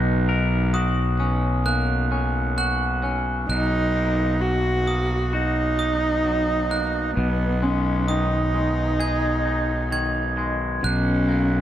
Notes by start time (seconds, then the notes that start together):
Already playing: B1 B2 C#3 F#3 D#4 F#4 F#6
0.29 A#4
0.74 F#4 D#6
1.20 C#4
1.66 A#3 F#6
2.12 C#4
2.58 F#4 F#6
3.03 C#4
3.49 B1 B2 D#4 F#6
3.96 A#3
4.41 F#3 F#4
4.87 A#3 D#6
5.33 D#4 F#4
5.79 D#4 D#6
6.24 F#3
6.71 A#3 F#6
7.16 B1 B2 B3
7.62 G#3 C#4
8.08 D#3 D#4 D#6
8.54 G#3
9.00 G#4 G#6
9.45 D#4
9.92 D#3 G#6
10.37 G#3
10.83 B1 B2 C#4 F#6
11.28 A#3